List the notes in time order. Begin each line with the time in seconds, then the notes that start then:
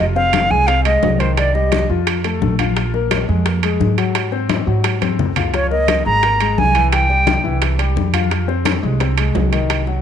0.00 F1 F3 F4
0.16 C4 C5 F5, high bongo, high conga
0.33 high bongo, high conga, high timbale
0.50 C2 G#3 G#4 G#5
0.67 C4 C5 F5, high bongo, high conga, high timbale
0.85 G#3 G#4 D#5, high bongo, high conga, high timbale
1.03 C2, high bongo, low bongo, high conga, low timbale
1.20 D#3 D#4 C5, high bongo, high timbale
1.36 D5, high bongo, high conga, high timbale
1.54 G3 G4 D#5, high bongo, high conga
1.72 high bongo, high conga, high timbale
1.89 F2 F3 F4
2.07 high bongo, high conga, high timbale
2.24 A3 A4, high bongo, high conga, high timbale
2.41 A#1, high bongo, low bongo, high conga
2.59 F4 F5, high bongo, high conga, high timbale
2.76 F3 F4, high bongo, high conga, high timbale
2.94 A#3 A#4, high bongo, high conga
3.11 high bongo, high conga, high timbale
3.28 F2 G#3 G#4
3.46 A#3 A#4, high bongo, high conga, high timbale
3.63 G#3 G#4, high bongo, high conga, high timbale
3.80 G#2, high bongo, low bongo, high conga
3.98 F#3 F#4, high bongo, high timbale
4.15 high bongo, high conga, high timbale
4.32 C4 C5, high bongo, high conga
4.49 high bongo, high conga, high timbale
4.67 G#2 F#3 F#4
4.84 high bongo, high conga, high timbale
5.01 C4 C5, high bongo, high conga, high timbale
5.19 C#2, high bongo, low bongo, low conga
5.36 F4 F5, high bongo, low conga, high timbale
5.54 F3 F4 C#5, high bongo, high conga, high timbale
5.70 A#3 A#4 D#5, high bongo, high conga
5.88 high bongo, high conga, high timbale
6.05 G#1 G#3 G#4 A#5
6.23 A#3 A#4, high bongo, high conga, high timbale
6.40 G#3 G#4, high bongo, high conga, high timbale
6.58 C2 G#5, high bongo, low bongo, high conga
6.75 E3 E4, high bongo, high timbale
6.92 G5, high bongo, high conga, high timbale
7.09 G3 G4, high bongo, high conga
7.27 high bongo, high conga, high timbale
7.44 C2 E3 E4
7.62 high bongo, high conga, high timbale
7.78 G3 G4, high bongo, high conga, high timbale
7.96 F2, high bongo, low bongo, high conga
8.14 F4 F5, high bongo, high conga, high timbale
8.30 F3 F4, high bongo, high conga, high timbale
8.48 C4 C5, high bongo, high conga
8.65 high bongo, high conga, high timbale
8.83 C2 G#3 G#4
9.00 C4 C5, high bongo, high conga, high timbale
9.18 G#3 G#4, high bongo, high conga, high timbale
9.35 C2, high bongo, low bongo, high conga, low timbale
9.52 D#3 D#4, high bongo, high timbale
9.69 high bongo, high conga, high timbale
9.87 F#3 F#4, high bongo, high conga